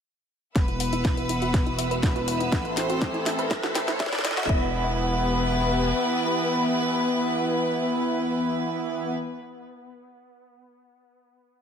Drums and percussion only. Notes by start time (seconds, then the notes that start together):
0.56 kick, snare, closed hi-hat
0.68 closed hi-hat
0.80 open hi-hat
0.93 closed hi-hat
1.05 kick, snare, closed hi-hat
1.17 closed hi-hat
1.29 open hi-hat
1.42 closed hi-hat
1.54 kick, snare, closed hi-hat
1.67 closed hi-hat
1.79 open hi-hat
1.91 closed hi-hat
2.03 kick, snare, closed hi-hat
2.16 closed hi-hat
2.28 open hi-hat
2.40 closed hi-hat
2.52 kick, snare, closed hi-hat
2.65 closed hi-hat
2.77 snare, open hi-hat
2.90 closed hi-hat
3.02 kick, snare, closed hi-hat
3.14 closed hi-hat
3.26 snare, open hi-hat
3.39 closed hi-hat
3.51 kick, snare, closed hi-hat
3.63 snare, closed hi-hat
3.75 snare, open hi-hat
3.88 snare, closed hi-hat
4.00 kick, snare, closed hi-hat
4.06 snare
4.13 snare, closed hi-hat
4.19 snare
4.25 snare, open hi-hat
4.31 snare
4.37 snare, closed hi-hat
4.43 snare
4.49 kick